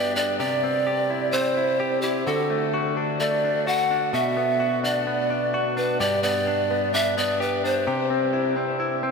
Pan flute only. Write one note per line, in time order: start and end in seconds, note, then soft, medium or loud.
0.00 0.15 D5 loud
0.16 0.38 D5 medium
0.39 1.34 D5 loud
1.32 2.03 C5 loud
2.02 2.28 G4 medium
2.26 2.93 A4 medium
3.20 3.69 D5 loud
3.67 4.13 F#5 loud
4.13 4.80 E5 loud
4.84 5.73 D5 medium
5.77 6.02 B4 medium
6.00 6.22 D5 loud
6.23 6.95 D5 loud
6.94 7.17 E5 loud
7.18 7.43 D5 medium
7.42 7.64 B4 medium
7.65 8.07 C5 medium